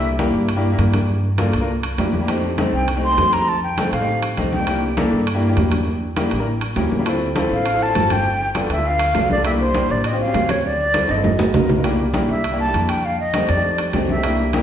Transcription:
Already playing: C2 A#3 D4 E4 G4 E5
0.04 high conga
0.19 A#3 D4 E4 G4, high conga, high timbale
0.34 G2, high conga
0.49 high conga, high timbale
0.56 A#3 D4 E4 G4
0.64 high conga
0.72 A#3 D4 E4 G4
0.78 G2, high conga, high timbale
0.94 high conga, high timbale
1.09 high conga
1.24 high conga
1.38 A#3 D4 F4 A4, high conga, high timbale
1.53 C2, high conga, high timbale
1.61 A#3 D4 F4 A#4
1.69 high conga
1.83 high conga, high timbale
1.98 F2 A#3 D4 E4 G4, high conga, high timbale, low timbale
2.13 high conga
2.21 A#3 D4 E4 G4
2.28 A3 C4 D#4 G4, high conga, high timbale
2.43 high conga
2.58 A3 C4 D#4 A4, high conga, high timbale
2.73 C2 G5, high conga
2.88 high conga, high timbale
2.96 A3 C4 D#4 G4
3.03 C6, high conga
3.11 A3 C4 D#4 A4
3.17 F2, high conga, high timbale, low timbale
3.33 A#5, high timbale
3.48 A5, high conga
3.62 G5, high conga
3.78 A3 C4 D#4 A4, high conga, high timbale
3.92 A2 F5, high conga, high timbale
4.00 A3 C4 D#4 G4
4.08 high conga
4.22 high conga, high timbale
4.37 C2 A3 C4 D#4 G4, high conga, high timbale
4.53 G5, high conga
4.59 A3 C4 D#4 G4
4.67 A#3 D4 E4 G4, high conga, high timbale
4.83 high conga
4.97 A#3 D4 E4 A4, high conga, high timbale
5.12 G2, high conga
5.27 high conga, high timbale
5.34 A#3 D4 E4 G4
5.42 high conga
5.49 A#3 D4 E4 G4
5.57 E2, high conga, high timbale, low timbale
5.72 high conga, high timbale
5.87 high conga
6.02 high conga
6.16 A#3 D4 E4 G4, high conga, high timbale
6.31 A1, high conga, high timbale
6.39 A#3 D4 E4 A#4
6.47 high conga
6.61 high conga, high timbale
6.76 D2 A#3 C#4 E4 G4, high conga, high timbale, low timbale
6.92 high conga
6.99 A#3 C#4 E4 G4
7.06 C4 E4 F4 A4, high conga, high timbale
7.21 high conga
7.36 C4 E4 F4 A4, high conga, high timbale
7.50 A1 F5, high conga
7.66 high conga, high timbale
7.73 C4 E4 F4 A4
7.81 A5, high conga
7.88 C4 E4 F4 A4
7.95 G1, high conga, high timbale, low timbale
8.10 G5, high conga, high timbale
8.26 high conga
8.41 high conga
8.55 B3 D4 F4 A4, high conga, high timbale
8.70 D2 E5, high conga, high timbale
8.77 B3 D4 F4 A4
8.85 F5, high conga
8.99 high conga, high timbale
9.15 C2 B3 D4 F4 A4, high conga, high timbale, low timbale
9.30 D5, high conga
9.37 B3 D4 F4 A4
9.45 A#3 D4 E4 G4 E5, high conga, high timbale
9.60 C5, high conga
9.74 A#3 D4 E4 G4, high conga, high timbale
9.90 A1 D5, high conga
10.04 D#5, high conga, high timbale
10.12 C4 C#4 F4 G4
10.20 F5, high conga
10.27 C4 C#4 F4 G4
10.34 D2, high conga, high timbale, low timbale
10.49 C#5, high conga, high timbale
10.64 D5, high conga
10.79 high conga
10.94 C4 E4 F4 A4, high conga, high timbale
11.09 G1 D#5, high conga, high timbale
11.16 C4 E4 F4 A4
11.24 high conga, low timbale
11.39 high conga, low timbale
11.54 C2 B3 D#4 F4 A#4, low conga, low timbale
11.69 low conga, low timbale
11.77 B3 D#4 F4 A#4
11.84 A#3 D4 E4 G4, high conga, high timbale
11.99 high conga
12.14 A#3 D4 E4 G4, high conga, high timbale
12.29 C2 E5, high conga
12.44 high conga, high timbale
12.52 A#3 D4 E4 G4
12.59 A5, high conga
12.67 A#3 D4 E4 G4
12.74 F2, high conga, high timbale
12.89 G5, high timbale
13.04 F5, high conga
13.19 D#5, high conga
13.34 A3 C4 D#4 G4, high conga, high timbale
13.49 F2 D5, high conga, high timbale
13.57 A3 C4 D#4 G4
13.64 high conga
13.78 high conga, high timbale
13.93 C2 A3 C4 D#4 G4, high conga, high timbale, low timbale
14.09 E5, high conga
14.16 A3 C4 D#4 G4
14.23 A#3 D4 E4 G4, high conga, high timbale
14.39 high conga
14.53 A#3 D4 E4 G4, high conga, high timbale

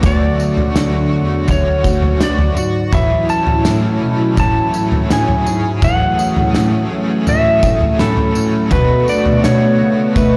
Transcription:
Already playing: D4
0.02 D2 D3 F#3 A3 F#4 D5, kick, floor tom, tambourine
0.06 F#4
0.37 F#4, tambourine
0.43 A3
0.57 floor tom
0.74 D2 D3 A3 F#4, snare, tambourine
1.10 E2 F#4
1.16 A3
1.47 D2 D3 A3 C#4 C#5, kick, floor tom, tambourine
1.53 F#4
1.82 D2 C#4 F#4, kick, tambourine
1.88 A3
2.02 floor tom
2.19 D2 D3 A3 B3 F#4, snare, tambourine
2.24 D5
2.38 floor tom
2.55 G#2 F#4, tambourine
2.92 A2 E3 A3 C#4 E4 E5 B5, kick, floor tom, tambourine
2.96 G#4
3.29 C#4 A5, tambourine
3.33 A3
3.47 A2, floor tom
3.64 A2 E3 A3 C#4, snare, tambourine
4.02 B2 A3 C#4
4.36 A2 E3 A3, kick, floor tom, tambourine
4.40 C#4 A5
4.74 A2 A3 C#4, tambourine
4.92 floor tom
5.08 A2 E3 A3 C#4, snare, tambourine
5.12 G#4 G#5
5.28 floor tom
5.44 G#2 C#4 G#4, tambourine
5.81 A2 E3 A3 C#4 G#4 F#5, kick, floor tom, tambourine
6.17 C#4 G#4, tambourine
6.22 A3
6.36 A2, floor tom
6.54 A2 E3 A3 C#4 G#4, snare, tambourine
6.89 C#4 G#4
6.95 A3
7.25 A2 E3 A3 C#4 E5, floor tom, tambourine
7.31 G#4
7.61 A2 C#4 G#4, kick, tambourine
7.66 A3
7.81 floor tom
7.98 A2 E3 A3 C#4 A4 B5, snare, tambourine
8.17 floor tom
8.35 A2 A3 C#4, tambourine
8.69 B2 F#3 A3 B3 D4 F#4 B4, kick, floor tom, tambourine
9.06 D4 F#4 D5, tambourine
9.11 A3
9.26 B2, floor tom
9.41 B2 F#3 A3 D4 F#4 C#5, snare, tambourine
9.78 C#3 F#4
9.83 A3
10.14 B2 F#3 A3 D4 B4 E5, kick, floor tom, tambourine
10.20 F#4

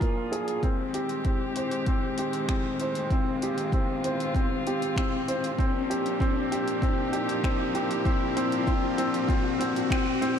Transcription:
Already playing: F3 A#3 D4 F4 G#4 A#4, riser
0.01 A#3, kick, closed hi-hat
0.32 G#4, closed hi-hat
0.48 closed hi-hat
0.62 D#3 G#3 C4 G4, kick, closed hi-hat
0.94 G4, closed hi-hat
1.09 closed hi-hat
1.25 C4, kick, closed hi-hat
1.56 C5, closed hi-hat
1.71 closed hi-hat
1.86 C4, kick, closed hi-hat
2.18 G4, closed hi-hat
2.33 closed hi-hat
2.49 C4, finger snap, kick, closed hi-hat
2.80 C5, closed hi-hat
2.95 closed hi-hat
3.10 C4 F4, kick, closed hi-hat
3.42 G4, closed hi-hat
3.58 closed hi-hat
3.72 C4, kick, closed hi-hat
4.04 C5, closed hi-hat
4.20 closed hi-hat
4.35 C4, kick, closed hi-hat
4.67 G4, closed hi-hat
4.82 closed hi-hat
4.96 C4, finger snap, kick, closed hi-hat
5.28 C5, closed hi-hat
5.44 closed hi-hat
5.58 F3 A#3 C4 D4 G4, kick, closed hi-hat
5.90 G4, closed hi-hat
6.06 closed hi-hat
6.20 C4, kick, closed hi-hat
6.52 G4, closed hi-hat
6.68 closed hi-hat
6.82 C4, kick, closed hi-hat
7.13 G4, closed hi-hat
7.29 closed hi-hat
7.44 C4, finger snap, kick, closed hi-hat
7.75 G4, closed hi-hat
7.91 closed hi-hat
8.05 C4, kick, closed hi-hat
8.36 C4, closed hi-hat
8.52 closed hi-hat
8.67 C4, kick, closed hi-hat
8.98 C4, closed hi-hat
9.14 closed hi-hat
9.29 C4, kick, closed hi-hat
9.59 C4, closed hi-hat
9.76 closed hi-hat
9.90 C4, finger snap, kick, closed hi-hat
10.22 C4, closed hi-hat

